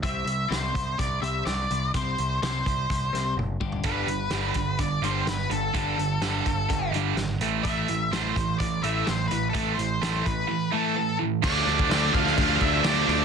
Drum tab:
CC |----------------|----------------|----------------|----------------|
HH |x-x-x-x-x-x-x-x-|x-x-x-x-x-x-----|x-x-x-x-x-x-x-x-|x-x-x-x-x-x-x-x-|
SD |----o-------o---|----o-----o-----|----o-------o---|----o-------o---|
T1 |----------------|------------o---|----------------|----------------|
FT |----------------|---------------o|----------------|----------------|
BD |o-----o-o-------|o-----o-o-----o-|o-----o-o-------|o-----o-o-------|

CC |----------------|----------------|x-x-x-x-x-x-x-x-|
HH |x-x-x-x-x-x-x-x-|x-x-x-x---------|----------------|
SD |----o-------o---|----o-----------|----o--o----o---|
T1 |----------------|----------------|----------------|
FT |----------------|----------------|----------------|
BD |o-----o-o-------|o-----o---------|o--o--o-o-o-----|